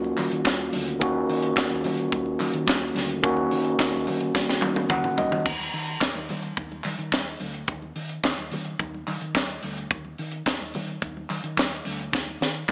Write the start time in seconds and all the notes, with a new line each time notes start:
Already playing: D#2 D#3 A#3 C#4 F4 F#4
0.04 muted conga
0.17 D#3, clap, open hi-hat, high conga
0.31 D#3, closed hi-hat
0.45 D#2, kick, snare, clap, closed hi-hat, muted conga, high conga
0.59 muted conga
0.73 D2, open hi-hat, high conga
0.88 closed hi-hat
1.00 D#2 D#3 A#3 C#4 F#4, kick, closed hi-hat, low conga
1.29 D#3, open hi-hat
1.42 closed hi-hat
1.57 D#2, kick, snare, clap, closed hi-hat
1.71 D#2, muted conga
1.84 D#3, open hi-hat, high conga, low conga
1.98 closed hi-hat
2.12 D#2, kick, closed hi-hat, high conga
2.26 muted conga
2.40 D#3, clap, open hi-hat, high conga
2.54 D#3, closed hi-hat
2.67 D#2, kick, snare, clap, closed hi-hat, muted conga, high conga
2.81 muted conga
2.95 D2, snare, open hi-hat, high conga
3.10 closed hi-hat
3.22 D#2 D#3 A#3 C#4 F#4, kick, closed hi-hat, muted conga, low conga
3.37 muted conga
3.51 D#3, open hi-hat
3.65 closed hi-hat
3.79 D#2, kick, snare, clap, closed hi-hat
3.92 D#2, muted conga
4.07 D#3, open hi-hat, high conga, low conga
4.20 closed hi-hat
4.35 A#1, kick, snare, high conga
4.49 snare
4.62 D#3, clap, high tom, high conga
4.76 high tom
4.89 D#2 F#5, kick, clap, mid tom, muted conga, high conga
5.04 D#3, mid tom, muted conga
5.17 D#2 D#5, floor tom, high conga
5.32 D#3, floor tom
5.45 D#2, kick, crash, muted conga, low conga
5.59 muted conga
5.73 D#3, open hi-hat
5.86 closed hi-hat
6.01 D#2, kick, snare, clap, closed hi-hat, muted conga
6.15 D#2, muted conga
6.29 D#3, open hi-hat, high conga, low conga
6.43 closed hi-hat
6.57 D#2, kick, closed hi-hat, muted conga
6.72 muted conga
6.84 D#3, clap, open hi-hat, high conga
6.98 D#3, closed hi-hat
7.12 D#2, kick, snare, clap, closed hi-hat, muted conga, high conga
7.26 muted conga
7.40 D2, open hi-hat, high conga
7.54 closed hi-hat
7.68 D#2, kick, closed hi-hat, muted conga, low conga
7.82 muted conga
7.96 D#3, open hi-hat
8.09 closed hi-hat
8.23 D#2, kick, snare, clap, closed hi-hat, muted conga
8.37 D#2, muted conga
8.51 D#3, open hi-hat, high conga, low conga
8.65 closed hi-hat
8.79 D#2, kick, closed hi-hat, muted conga
8.94 muted conga
9.07 D#3, clap, open hi-hat, high conga
9.21 D#3, closed hi-hat
9.35 D#2, kick, snare, clap, closed hi-hat, muted conga, high conga
9.49 muted conga
9.63 D2, open hi-hat, high conga
9.77 closed hi-hat
9.91 D#2, kick, closed hi-hat, low conga
10.05 muted conga
10.18 D#3, open hi-hat
10.31 closed hi-hat
10.46 D#2, kick, snare, clap, closed hi-hat
10.61 D#2, muted conga
10.74 D#3, open hi-hat, high conga, low conga
10.87 closed hi-hat
11.02 D#2, kick, closed hi-hat
11.17 muted conga
11.30 D#3, clap, open hi-hat, high conga
11.44 D#3, closed hi-hat
11.57 D#2, kick, snare, clap, closed hi-hat, high conga
11.71 muted conga
11.85 D2, open hi-hat, high conga
12.00 closed hi-hat
12.13 D#2, kick, snare, muted conga, low conga
12.27 muted conga
12.41 D#3, snare
12.69 D#2, kick, clap, high tom, muted conga